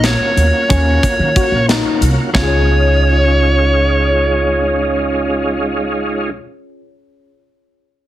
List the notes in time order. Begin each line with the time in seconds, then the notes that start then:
Already playing: A#1 A#3 C#4 F4 F#4
0.04 C#5, snare, closed hi-hat
0.36 D#2, closed hi-hat
0.69 D#2 C#4 C#5, kick, closed hi-hat
1.03 kick, closed hi-hat
1.19 D#3
1.36 F#4, kick, closed hi-hat
1.52 A#1
1.68 D#4, snare, closed hi-hat
2.01 C2, closed hi-hat
2.34 C#2 G#3 C#4 D#4 F4 C#5, kick, snare
2.39 F4 G#4
2.47 C#5